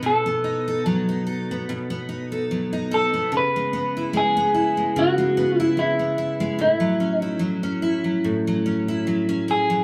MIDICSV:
0, 0, Header, 1, 3, 480
1, 0, Start_track
1, 0, Key_signature, 4, "minor"
1, 0, Tempo, 819784
1, 23, Time_signature, 4, 2, 24, 8
1, 5761, End_track
2, 0, Start_track
2, 0, Title_t, "Clean electric guitar"
2, 0, Program_c, 0, 27
2, 37, Note_on_c, 0, 69, 80
2, 487, Note_off_c, 0, 69, 0
2, 1723, Note_on_c, 0, 69, 100
2, 1937, Note_off_c, 0, 69, 0
2, 1973, Note_on_c, 0, 71, 95
2, 2415, Note_off_c, 0, 71, 0
2, 2443, Note_on_c, 0, 68, 100
2, 2921, Note_on_c, 0, 66, 97
2, 2927, Note_off_c, 0, 68, 0
2, 3272, Note_off_c, 0, 66, 0
2, 3272, Note_on_c, 0, 64, 97
2, 3388, Note_off_c, 0, 64, 0
2, 3390, Note_on_c, 0, 64, 81
2, 3866, Note_off_c, 0, 64, 0
2, 3873, Note_on_c, 0, 64, 75
2, 4183, Note_off_c, 0, 64, 0
2, 4183, Note_on_c, 0, 63, 75
2, 4325, Note_off_c, 0, 63, 0
2, 5567, Note_on_c, 0, 68, 94
2, 5761, Note_off_c, 0, 68, 0
2, 5761, End_track
3, 0, Start_track
3, 0, Title_t, "Steel-string acoustic guitar"
3, 0, Program_c, 1, 25
3, 0, Note_on_c, 1, 59, 69
3, 0, Note_on_c, 1, 63, 57
3, 15, Note_on_c, 1, 47, 81
3, 149, Note_off_c, 1, 59, 0
3, 152, Note_on_c, 1, 59, 68
3, 255, Note_off_c, 1, 63, 0
3, 258, Note_on_c, 1, 63, 60
3, 397, Note_on_c, 1, 69, 74
3, 503, Note_on_c, 1, 54, 69
3, 629, Note_off_c, 1, 63, 0
3, 636, Note_on_c, 1, 63, 62
3, 734, Note_off_c, 1, 69, 0
3, 741, Note_on_c, 1, 69, 66
3, 882, Note_off_c, 1, 59, 0
3, 885, Note_on_c, 1, 59, 60
3, 979, Note_off_c, 1, 47, 0
3, 990, Note_on_c, 1, 47, 73
3, 1111, Note_off_c, 1, 59, 0
3, 1114, Note_on_c, 1, 59, 70
3, 1215, Note_off_c, 1, 63, 0
3, 1222, Note_on_c, 1, 63, 60
3, 1350, Note_off_c, 1, 69, 0
3, 1357, Note_on_c, 1, 69, 67
3, 1463, Note_off_c, 1, 54, 0
3, 1470, Note_on_c, 1, 54, 65
3, 1589, Note_off_c, 1, 63, 0
3, 1596, Note_on_c, 1, 63, 62
3, 1699, Note_off_c, 1, 69, 0
3, 1706, Note_on_c, 1, 69, 79
3, 1834, Note_off_c, 1, 59, 0
3, 1836, Note_on_c, 1, 59, 60
3, 1943, Note_on_c, 1, 49, 80
3, 1997, Note_off_c, 1, 63, 0
3, 1998, Note_off_c, 1, 69, 0
3, 1999, Note_off_c, 1, 54, 0
3, 2000, Note_off_c, 1, 47, 0
3, 2084, Note_on_c, 1, 56, 61
3, 2182, Note_off_c, 1, 59, 0
3, 2184, Note_on_c, 1, 59, 58
3, 2323, Note_on_c, 1, 64, 70
3, 2413, Note_off_c, 1, 56, 0
3, 2420, Note_on_c, 1, 56, 71
3, 2550, Note_off_c, 1, 59, 0
3, 2557, Note_on_c, 1, 59, 65
3, 2659, Note_off_c, 1, 64, 0
3, 2661, Note_on_c, 1, 64, 62
3, 2787, Note_off_c, 1, 56, 0
3, 2794, Note_on_c, 1, 56, 57
3, 2898, Note_off_c, 1, 49, 0
3, 2905, Note_on_c, 1, 49, 79
3, 3025, Note_off_c, 1, 56, 0
3, 3032, Note_on_c, 1, 56, 62
3, 3138, Note_off_c, 1, 59, 0
3, 3145, Note_on_c, 1, 59, 64
3, 3275, Note_off_c, 1, 64, 0
3, 3277, Note_on_c, 1, 64, 73
3, 3372, Note_off_c, 1, 56, 0
3, 3379, Note_on_c, 1, 56, 66
3, 3502, Note_off_c, 1, 59, 0
3, 3509, Note_on_c, 1, 59, 56
3, 3616, Note_off_c, 1, 64, 0
3, 3619, Note_on_c, 1, 64, 71
3, 3741, Note_off_c, 1, 56, 0
3, 3748, Note_on_c, 1, 56, 69
3, 3856, Note_on_c, 1, 45, 74
3, 3913, Note_off_c, 1, 56, 0
3, 3914, Note_off_c, 1, 59, 0
3, 3917, Note_off_c, 1, 49, 0
3, 3982, Note_on_c, 1, 54, 69
3, 3999, Note_off_c, 1, 64, 0
3, 4099, Note_on_c, 1, 61, 58
3, 4228, Note_on_c, 1, 64, 68
3, 4322, Note_off_c, 1, 54, 0
3, 4329, Note_on_c, 1, 54, 70
3, 4461, Note_off_c, 1, 61, 0
3, 4468, Note_on_c, 1, 61, 63
3, 4578, Note_off_c, 1, 64, 0
3, 4580, Note_on_c, 1, 64, 72
3, 4702, Note_off_c, 1, 54, 0
3, 4709, Note_on_c, 1, 54, 53
3, 4821, Note_off_c, 1, 45, 0
3, 4827, Note_on_c, 1, 45, 73
3, 4953, Note_off_c, 1, 54, 0
3, 4961, Note_on_c, 1, 54, 66
3, 5061, Note_off_c, 1, 61, 0
3, 5069, Note_on_c, 1, 61, 58
3, 5199, Note_off_c, 1, 64, 0
3, 5201, Note_on_c, 1, 64, 76
3, 5303, Note_off_c, 1, 54, 0
3, 5310, Note_on_c, 1, 54, 66
3, 5431, Note_off_c, 1, 61, 0
3, 5438, Note_on_c, 1, 61, 65
3, 5549, Note_off_c, 1, 64, 0
3, 5551, Note_on_c, 1, 64, 70
3, 5672, Note_off_c, 1, 54, 0
3, 5679, Note_on_c, 1, 54, 67
3, 5761, Note_off_c, 1, 45, 0
3, 5761, Note_off_c, 1, 54, 0
3, 5761, Note_off_c, 1, 61, 0
3, 5761, Note_off_c, 1, 64, 0
3, 5761, End_track
0, 0, End_of_file